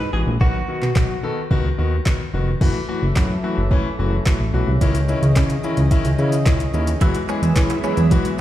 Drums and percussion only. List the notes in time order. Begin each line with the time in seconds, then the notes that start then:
0.41 kick
0.82 clap
0.96 kick, snare, clap
1.51 kick
2.06 kick, snare, clap
2.61 kick, crash
3.16 kick, snare, clap
3.71 kick
4.26 kick, snare, clap
4.81 kick, closed hi-hat, shaker
4.95 closed hi-hat, shaker
5.09 shaker
5.23 closed hi-hat, shaker
5.36 kick, snare, clap, closed hi-hat, shaker
5.50 closed hi-hat, shaker
5.63 shaker
5.77 closed hi-hat, shaker
5.91 kick, closed hi-hat, shaker
6.05 closed hi-hat, shaker
6.18 shaker
6.32 closed hi-hat, shaker
6.46 kick, snare, clap, closed hi-hat, shaker
6.60 closed hi-hat, shaker
6.74 shaker
6.87 closed hi-hat, shaker
7.01 kick, closed hi-hat, shaker
7.15 closed hi-hat, shaker
7.29 shaker
7.43 closed hi-hat, shaker
7.56 kick, snare, clap, closed hi-hat, shaker
7.70 closed hi-hat, shaker
7.84 shaker
7.97 closed hi-hat, shaker
8.11 kick, closed hi-hat, shaker
8.25 closed hi-hat, shaker